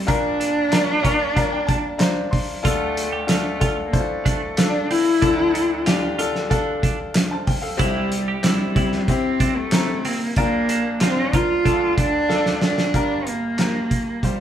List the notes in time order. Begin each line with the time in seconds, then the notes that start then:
0.06 A#1 A#2 D4 F4 A#4, kick, closed hi-hat
0.40 D4, closed hi-hat
0.71 D4 F4 A#4, snare, clap, closed hi-hat
1.03 D4 F4 A#4 D5, kick, closed hi-hat
1.35 D4 F4 A#4 F5, kick, closed hi-hat
1.52 G5
1.67 D4 A5, kick, closed hi-hat
1.98 D4 F4 C5 A#5, snare, clap, closed hi-hat
2.31 C6, kick, open hi-hat
2.63 D2 D3 D4 F4 A4, kick, closed hi-hat
2.68 A3
2.97 closed hi-hat
3.13 G4
3.27 A3 D4 F4 A4, snare, clap, closed hi-hat
3.60 D4 F4 A4, kick, closed hi-hat
3.87 A#3
3.93 A3 D4 E4 C5, kick, closed hi-hat
4.00 F4
4.25 D4, kick, closed hi-hat
4.58 D4 F4 A4, snare, clap, closed hi-hat
4.90 C4 E4, open hi-hat
5.21 D2 D3 F3 D4 A4, kick, closed hi-hat
5.54 D4, closed hi-hat
5.86 D4 F4 G4, snare, clap, closed hi-hat
6.18 D4 F4 A4, closed hi-hat
6.35 snare
6.50 D4 F4 A4, kick, closed hi-hat
6.83 D4, kick, closed hi-hat
7.15 snare, clap, closed hi-hat
7.31 C5 A5
7.47 G5, kick, open hi-hat
7.62 A4 F5
7.77 C2 C3 G3 C4 E4 G4, kick, closed hi-hat
8.12 closed hi-hat
8.28 G4
8.43 G3 C4 E4 G4, snare, clap, closed hi-hat
8.75 C4 E4 G4, kick, closed hi-hat
8.92 snare
9.08 C4 E4 G4, kick, closed hi-hat
9.40 D4, kick, closed hi-hat
9.57 A3
9.72 C4 E4 A#5, snare, clap, closed hi-hat
10.05 A#3 C4, open hi-hat
10.36 A#1 A#2 A#3 D4 F4 A#4, kick, closed hi-hat
10.69 D4, closed hi-hat
11.01 C4 D4 F4 C5, snare, clap, closed hi-hat
11.33 D4 F4 A#4, kick, closed hi-hat
11.64 D2 D3 D4 F4 A4, kick, closed hi-hat
11.98 D4, kick, closed hi-hat
12.29 D4 F4 A4, snare
12.46 snare
12.62 D4, snare
12.78 snare
12.94 G1 G2 F4 G4 A#4, kick, closed hi-hat
13.27 A#3, closed hi-hat
13.59 F4 G4 A#4, snare, clap, closed hi-hat
13.91 kick, closed hi-hat
14.23 G3 F4 G4 C5, kick, closed hi-hat